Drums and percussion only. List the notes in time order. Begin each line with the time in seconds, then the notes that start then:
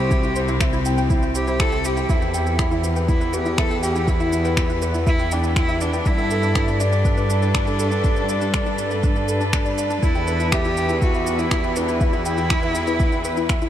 0.11 kick, shaker
0.23 shaker
0.36 shaker
0.48 shaker
0.61 finger snap, kick, shaker
0.73 shaker
0.85 shaker
0.98 shaker
1.10 kick, shaker
1.23 shaker
1.35 shaker
1.47 shaker
1.60 finger snap, kick, shaker
1.72 shaker
1.85 shaker
1.97 shaker
2.09 kick, shaker
2.22 shaker
2.34 shaker
2.47 shaker
2.59 finger snap, kick, shaker
2.71 shaker
2.84 shaker
2.96 shaker
3.09 kick, shaker
3.21 shaker
3.33 shaker
3.46 shaker
3.58 finger snap, kick, shaker
3.71 shaker
3.83 shaker
3.96 shaker
4.08 kick, shaker
4.20 shaker
4.33 shaker
4.45 shaker
4.57 finger snap, kick, shaker
4.70 shaker
4.82 shaker
4.94 shaker
5.07 kick, shaker
5.19 shaker
5.31 shaker
5.44 shaker
5.56 finger snap, kick, shaker
5.69 shaker
5.81 shaker
5.93 shaker
6.06 kick, shaker
6.18 shaker
6.31 shaker
6.43 shaker
6.55 finger snap, kick, shaker
6.68 shaker
6.80 shaker
6.93 shaker
7.05 kick, shaker
7.18 shaker
7.30 shaker
7.42 shaker
7.55 finger snap, kick, shaker
7.67 shaker
7.79 shaker
7.92 shaker
8.04 kick, shaker
8.16 shaker
8.29 shaker
8.41 shaker
8.54 finger snap, kick, shaker
8.66 shaker
8.78 shaker
8.91 shaker
9.03 kick, shaker
9.16 shaker
9.28 shaker
9.41 shaker
9.53 finger snap, kick, shaker
9.66 shaker
9.78 shaker
9.90 shaker
10.03 kick, shaker
10.15 shaker
10.28 shaker
10.40 shaker
10.52 finger snap, kick, shaker
10.65 shaker
10.77 shaker
10.89 shaker
11.02 kick, shaker
11.14 shaker
11.27 shaker
11.39 shaker
11.51 finger snap, kick, shaker
11.64 shaker
11.76 shaker
11.88 shaker
12.01 kick, shaker
12.13 shaker
12.25 shaker
12.38 shaker
12.50 finger snap, kick, shaker
12.63 shaker
12.75 shaker
12.87 shaker
13.00 kick, shaker
13.12 shaker
13.25 shaker
13.37 shaker
13.49 finger snap, kick, shaker
13.62 shaker